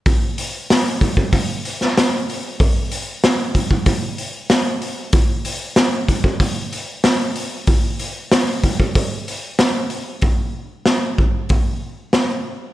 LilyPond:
\new DrumStaff \with { instrumentName = "Drums" } \drummode { \time 4/4 \tempo 4 = 94 <hho bd>8 hho8 <hho sn>8 <hho bd>16 bd16 <hho bd>8 hho16 sn16 <hho sn>8 hho8 | <hho bd>8 hho8 <hho sn>8 <hho bd>16 bd16 <hho bd>8 hho8 <hho sn>8 hho8 | <hho bd>8 hho8 <hho sn>8 <hho bd>16 bd16 <hho bd>8 hho8 <hho sn>8 hho8 | <hho bd>8 hho8 <hho sn>8 <hho bd>16 bd16 <hho bd>8 hho8 <hho sn>8 hho8 |
<hho bd>4 <hho sn>8 bd8 <hho bd>4 <hho sn>4 | }